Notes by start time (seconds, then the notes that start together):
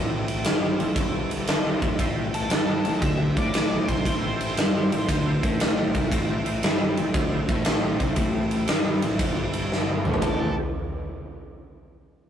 Already playing: A1 A2 C4 E4 A4
0.28 ride
0.44 G2 G3, snare, ride
0.79 A1 A2, ride
0.96 G1 G2, kick, ride
1.31 ride
1.47 snare, ride
1.82 A1 A2, kick, ride
1.99 A1 A2 E4 A4 C5, kick, ride
2.34 A4, ride
2.50 G2 G3, snare, ride
2.85 A1 A2, ride
2.98 D2 D3 D#5 E5, kick, ride
3.37 A1 A2 D5, kick, ride
3.54 snare, ride
3.87 C2 C3 C5, kick, ride
4.05 A1 A2, kick, ride
4.41 ride
4.57 G2 G3, snare, ride
4.92 A1 A2, ride
5.08 D2 D3, kick, ride
5.43 A1 A2, kick, ride
5.60 snare, ride
5.95 C2 C3, kick, ride
6.11 A1 A2 E4 A4 C5, kick, ride
6.46 ride
6.63 G2 G3, snare, ride
6.97 A1 A2, ride
7.14 D2 D3, kick, ride
7.48 A1 A2, kick, ride
7.65 snare, ride
8.00 C2 C3, kick, ride
8.16 A1 A2, kick, ride
8.51 ride
8.68 G2 G3, snare, ride
9.02 A1 A2, ride
9.19 G1 G2, kick, ride
9.53 ride
9.72 snare
9.88 high tom
10.05 A1 A2, mid tom
10.14 floor tom
10.22 A1 A2 E3 A3 B3 C4 E4 G4 A4, kick, floor tom, ride bell